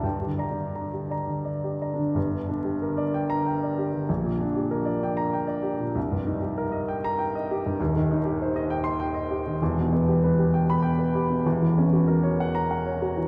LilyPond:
\new Staff \with { instrumentName = "Upright piano" } { \time 3/4 \key g \minor \tempo 4 = 96 << { g''16 g'16 <d'' bes''>16 d16 bes''16 g'16 <d'' bes''>16 d16 d''16 g'16 <d'' bes''>16 d16 | r4. r16 bes''8 r8. | r4. r16 bes''8 r8. | r4. r16 bes''8 r8. |
r4. r16 c'''8 r8. | \key e \dorian r4. r16 b''8 r8. | r4. r16 ais''8 r8. | } \\ { \tuplet 3/2 { g,8 d8 d'8~ } d'16 r8. \tuplet 3/2 { r4 d'8 } | <g,, g,>16 d16 d'16 g'16 bes'16 d''16 g''8 g''16 d''16 g'16 d16 | bes,,16 bes,16 d'16 g'16 bes'16 d''16 g''8 g''16 d''16 g'16 bes,16 | c,16 g,16 ees'16 g'16 bes'16 ees''16 g''8 g''16 ees''16 g'16 g,16 |
<ees,, ees,>16 ees16 ees'16 g'16 c''16 ees''16 g''8 g''16 ees''16 g'16 ees16 | <e,, e,>16 b,16 b16 g'16 b'16 g'16 g''8 g''16 b'16 g'16 b,16 | <e,, e,>16 e16 cis'16 fis'16 ais'16 cis''16 fis''8 fis''16 cis''16 fis'16 e16 | } >> }